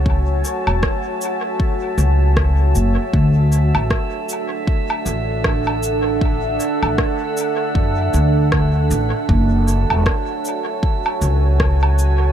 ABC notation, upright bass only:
X:1
M:4/4
L:1/16
Q:"Swing 16ths" 1/4=78
K:F#m
V:1 name="Upright bass" clef=bass
C,,2 z E,,, z6 C,,4 F,,, z | D,,3 A,,, z6 A,,,6- | A,,,2 z A,,, z4 F,,2 D,,4 A,,, z | F,,,3 E,,, z6 C,,6 |]